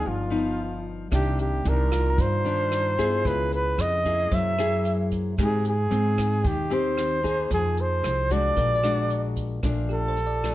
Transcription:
Already playing: nylon-string guitar F3 B3 D#4, tine electric piano D5 F5
0.04 upright bass G1, nylon-string guitar G2, flugelhorn F4
0.30 nylon-string guitar F3 B3 D#4
1.11 upright bass C2, nylon-string guitar C3 D#3 A#3 D4, flugelhorn G4, kick, cross-stick, closed hi-hat, shaker
1.39 flugelhorn G4, closed hi-hat, shaker
1.64 upright bass C2, nylon-string guitar D#3 A#3 D4, flugelhorn A#4, closed hi-hat, shaker
1.92 tine electric piano F4, kick, cross-stick, closed hi-hat, shaker
2.10 tine electric piano A#5
2.18 upright bass G2, nylon-string guitar G2, flugelhorn C5, kick, closed hi-hat, shaker
2.45 nylon-string guitar D#3 A#3 D4, closed hi-hat, shaker
2.72 cross-stick, closed hi-hat, shaker
2.98 nylon-string guitar B3 E4 G#4, kick, closed hi-hat, shaker
3.25 upright bass C#2, nylon-string guitar C#3, flugelhorn B4, kick, closed hi-hat, shaker
3.52 flugelhorn B4, closed hi-hat, shaker
3.78 upright bass F2, flugelhorn D#5, cross-stick, closed hi-hat
4.05 nylon-string guitar A#3 E4 G#4, kick, closed hi-hat, shaker
4.32 upright bass F#2, nylon-string guitar F#3, tine electric piano C5, flugelhorn E5, kick, closed hi-hat, shaker
4.58 nylon-string guitar A#3 E4 G#4, cross-stick, closed hi-hat, shaker
4.85 closed hi-hat, shaker
5.11 kick, closed hi-hat, shaker
5.38 upright bass G#2, nylon-string guitar G#3 C4 D#4 G4, kick, cross-stick, closed hi-hat, shaker
5.42 flugelhorn G#4
5.65 flugelhorn G#4, closed hi-hat, shaker
5.90 upright bass G#2, nylon-string guitar C4 D#4, closed hi-hat, shaker
6.18 kick, cross-stick, closed hi-hat, shaker
6.44 upright bass D#2, nylon-string guitar D#3, flugelhorn G4, kick, closed hi-hat, shaker
6.70 nylon-string guitar C4 D#4 G4, flugelhorn C5, closed hi-hat, shaker
6.97 cross-stick, closed hi-hat, shaker
7.23 nylon-string guitar A#3 D#4 G#4, kick, closed hi-hat, shaker
7.50 upright bass F2, nylon-string guitar F3, flugelhorn G#4, kick, closed hi-hat, shaker
7.77 flugelhorn C5, closed hi-hat, shaker
8.03 upright bass C2, cross-stick, closed hi-hat, shaker
8.30 nylon-string guitar G#3 D4 F#4, flugelhorn D5, kick, closed hi-hat, shaker
8.57 upright bass A#1, nylon-string guitar A#2, tine electric piano A#4, kick, closed hi-hat, shaker
8.76 tine electric piano D5
8.83 nylon-string guitar G#3 D4 F#4, cross-stick, closed hi-hat, shaker
9.10 closed hi-hat, shaker
9.36 kick, closed hi-hat, shaker
9.63 upright bass A#1, nylon-string guitar A#2 F3 A3 D4, kick, cross-stick, closed hi-hat
9.89 tine electric piano G4, flugelhorn A4, closed hi-hat
10.08 tine electric piano C5
10.17 closed hi-hat
10.27 tine electric piano D5
10.43 nylon-string guitar F3 A3 D4, kick, cross-stick, closed hi-hat

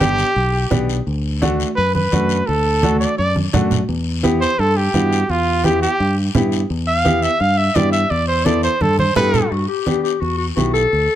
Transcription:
Already playing: fingered electric bass G1
0.00 upright piano B3 D4 G4, trumpet G4, high conga, short guiro
0.18 short guiro
0.36 fingered electric bass B1, long guiro
0.71 fingered electric bass B1, upright piano B3 D4 G4, high conga, low conga, short guiro
0.89 short guiro
1.07 fingered electric bass D2, long guiro
1.42 upright piano A3 D4 F#4, high conga, short guiro
1.60 short guiro
1.76 fingered electric bass F#2, trumpet B4, long guiro
1.95 trumpet B4, high conga
2.12 fingered electric bass F#2, upright piano A3 D4 F#4, high conga, short guiro
2.29 short guiro
2.47 fingered electric bass D2, trumpet A4, long guiro
2.83 upright piano A3 D4 F#4, high conga, short guiro
2.99 trumpet D5, short guiro
3.18 fingered electric bass F#2, trumpet D5, long guiro
3.36 high conga
3.53 fingered electric bass F#2, upright piano A3 D4 F#4, high conga, low conga, short guiro
3.71 low conga, short guiro
3.89 fingered electric bass E2, long guiro
4.23 upright piano B3 E4 G4, high conga, short guiro
4.41 trumpet C5, short guiro
4.59 fingered electric bass G2, trumpet A4, long guiro
4.77 trumpet G4
4.94 fingered electric bass G2, upright piano B3 E4 F#4, high conga, short guiro
5.12 short guiro
5.29 fingered electric bass E2, trumpet F4, long guiro
5.64 upright piano B3 E4 G4, trumpet G4, high conga, short guiro
5.82 trumpet G4, short guiro
6.00 fingered electric bass G2, long guiro
6.35 fingered electric bass G2, upright piano B3 E4 G4, high conga, low conga, short guiro
6.52 short guiro
6.70 fingered electric bass E2, long guiro
6.88 trumpet F5
7.05 upright piano B3 E4 G4, high conga, short guiro
7.22 trumpet E5, short guiro
7.40 fingered electric bass G2, trumpet F5, long guiro
7.58 trumpet E5
7.75 fingered electric bass G2, upright piano B3 E4 G4, trumpet D5, high conga, short guiro
7.92 trumpet E5, short guiro
8.10 fingered electric bass E2, trumpet D5, long guiro
8.28 trumpet C5
8.45 upright piano B3 E4 A4, trumpet D5, high conga, short guiro
8.63 trumpet C5, short guiro
8.81 fingered electric bass G2, trumpet A4, high conga, long guiro
8.99 trumpet C5, high conga
9.16 fingered electric bass G2, upright piano B3 E4 G4, clarinet A4, trumpet B4, low conga, short guiro
9.34 low conga, short guiro
9.51 fingered electric bass G2, clarinet F#4, long guiro
9.68 clarinet G4
9.86 upright piano B3 D4 G4, high conga, short guiro
10.03 clarinet G4, short guiro
10.21 fingered electric bass E2, clarinet F#4, long guiro
10.38 clarinet F#4
10.56 fingered electric bass B1, upright piano B3 E4 G4, clarinet F#4, high conga, short guiro
10.74 clarinet A4, short guiro
10.93 fingered electric bass D2, long guiro

